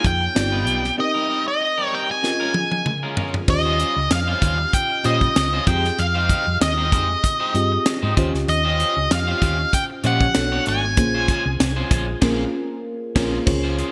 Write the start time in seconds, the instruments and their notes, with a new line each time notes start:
Already playing: fm electric piano A#3 D#4 F4 G#4 C#5
0.04 fingered electric bass F2, lead electric guitar G5, muted clean electric guitar stroke, kick, closed hi-hat
0.21 muted clean electric guitar stroke
0.35 fingered electric bass G1, fm electric piano B3 D#4 F4 G4 D5, muted clean electric guitar stroke, snare, closed hi-hat
0.52 clean electric guitar G3 D#4 F4 B4
0.67 fingered electric bass B1, clean electric guitar G3 D#4 F4 B4, closed hi-hat
0.84 muted clean electric guitar stroke, snare
0.97 fm electric piano C4 D#4 G4 A#4 D#5, lead electric guitar D#5, muted clean electric guitar stroke
1.14 clean electric guitar G3 C4 D#4 A#4
1.29 clean electric guitar G3 C4 D#4 A#4
1.46 lead electric guitar D#5, muted clean electric guitar stroke
1.61 muted clean electric guitar stroke
1.78 clean electric guitar G3 C4 D#4 A#4
1.92 clean electric guitar G3 C4 D#4 A#4, lead electric guitar G5
2.09 lead electric guitar G#5, muted clean electric guitar stroke
2.22 fm electric piano C#4 F4 G4 A#4 D#5, muted clean electric guitar stroke, snare
2.29 fm electric piano G#4
2.40 clean electric guitar G#3 C#4 F4 A#4
2.54 muted clean electric guitar stroke, high tom
2.71 muted clean electric guitar stroke, high tom
2.86 muted clean electric guitar stroke, mid tom
3.03 clean electric guitar G#3 C#4 F4 A#4
3.17 clean electric guitar G#3 C#4 F4 A#4, floor tom
3.34 muted clean electric guitar stroke, floor tom
3.47 fingered electric bass D#2, fm electric piano C#4 F4 G4 C5 D#5, lead electric guitar D#5, muted clean electric guitar stroke, kick, crash
3.65 clean electric guitar G3 C#4 F4 C5
3.79 clean electric guitar G3 C#4 F4 C5, closed hi-hat
3.96 fingered electric bass C#2, muted clean electric guitar stroke
4.11 fingered electric bass F2, lead electric guitar F5, muted clean electric guitar stroke, snare, closed hi-hat
4.28 clean electric guitar G3 C#4 F4 C5
4.41 fingered electric bass D#2, clean electric guitar G3 C#4 F4 C5, kick, closed hi-hat
4.58 muted clean electric guitar stroke
4.73 lead electric guitar G5, kick, closed hi-hat
4.90 muted clean electric guitar stroke
5.04 fingered electric bass A#2, clean electric guitar G3 C#4 F4 C5, fm electric piano C#4 F4 G4 C5 F5, lead electric guitar D#5, closed hi-hat
5.21 muted clean electric guitar stroke, kick
5.36 fingered electric bass C#2, muted clean electric guitar stroke, snare, closed hi-hat
5.53 clean electric guitar G3 C#4 F4 C5
5.67 fingered electric bass F2, clean electric guitar G#3 D#4 G4 C5, fm electric piano C4 F4 G4 G#4 D#5, lead electric guitar G5, kick, closed hi-hat
5.85 muted clean electric guitar stroke, snare
5.98 fingered electric bass F2, lead electric guitar F5, muted clean electric guitar stroke, closed hi-hat
6.15 clean electric guitar G#3 D#4 G4 C5
6.29 clean electric guitar G#3 D#4 G4 C5, kick, closed hi-hat
6.46 fingered electric bass F2, muted clean electric guitar stroke
6.60 fingered electric bass D#2, lead electric guitar D#5, muted clean electric guitar stroke, snare, closed hi-hat
6.77 clean electric guitar G#3 D#4 G4 C5
6.91 fingered electric bass F2, clean electric guitar G#3 D#4 G4 C5, kick, closed hi-hat
7.09 muted clean electric guitar stroke
7.23 muted clean electric guitar stroke, kick, closed hi-hat
7.40 clean electric guitar G#3 D#4 G4 C5
7.54 fingered electric bass G2, fm electric piano C4 F4 G4 G#4 D#5, muted clean electric guitar stroke, closed hi-hat
7.72 muted clean electric guitar stroke
7.86 muted clean electric guitar stroke, snare, closed hi-hat
8.02 fingered electric bass G#2, clean electric guitar G#3 D#4 G4 C5
8.17 fingered electric bass D#2, clean electric guitar C#4 F4 G4 C5, fm electric piano C#4 F4 G4 C5 D#5, kick, closed hi-hat
8.33 fingered electric bass C#2, muted clean electric guitar stroke, snare
8.48 fingered electric bass D#2, lead electric guitar D#5, muted clean electric guitar stroke, closed hi-hat
8.65 clean electric guitar C#4 F4 G4 C5
8.79 clean electric guitar C#4 F4 G4 C5, closed hi-hat
8.97 fingered electric bass C#2, muted clean electric guitar stroke
9.11 fingered electric bass F2, lead electric guitar F5, muted clean electric guitar stroke, snare, closed hi-hat
9.27 clean electric guitar C#4 F4 G4 C5
9.41 fingered electric bass D#2, clean electric guitar C#4 F4 G4 C5, kick, closed hi-hat
9.59 muted clean electric guitar stroke
9.73 lead electric guitar G5, kick, closed hi-hat
9.90 muted clean electric guitar stroke
10.03 fingered electric bass A#2, fm electric piano F3 C#4 G4 C5 D#5, clean electric guitar C#4 F4 G4 C5, lead electric guitar F#5, closed hi-hat
10.21 muted clean electric guitar stroke, kick
10.34 fingered electric bass B1, fm electric piano B3 D4 F#4 A4 C#5, muted clean electric guitar stroke, snare, closed hi-hat
10.52 clean electric guitar A3 D4 F#4 C#5
10.66 fingered electric bass G#1, clean electric guitar A3 D4 F#4 C#5, lead electric guitar G#5, closed hi-hat
10.83 muted clean electric guitar stroke
10.97 fingered electric bass A#1, fm electric piano A#3 C#4 F4 G#4 C5, muted clean electric guitar stroke, kick, closed hi-hat
11.15 clean electric guitar G#3 C#4 F4 C5
11.28 clean electric guitar G#3 C#4 F4 C5, kick, closed hi-hat
11.45 fingered electric bass C2, muted clean electric guitar stroke
11.60 fingered electric bass C2, muted clean electric guitar stroke, snare, closed hi-hat
11.76 clean electric guitar G#3 C#4 F4 C5
11.90 fingered electric bass A#1, clean electric guitar G#3 C#4 F4 C5, kick, closed hi-hat
12.07 muted clean electric guitar stroke
12.21 fingered electric bass A#1, clean electric guitar G#3 C#4 F4 C5, fm electric piano A#3 C#4 F4 G#4 A#4, kick, snare, crash
13.15 fingered electric bass A#1, clean electric guitar G#3 C#4 F4 C5, fm electric piano A#3 C#4 F4 G#4 A#4, kick, snare, crash
13.46 fingered electric bass C#2, fm electric piano C#4 F4 G#4 C5 C#5, muted clean electric guitar stroke, kick, crash
13.63 clean electric guitar G#3 C#4 F4 C5
13.78 clean electric guitar G#3 C#4 F4 C5, closed hi-hat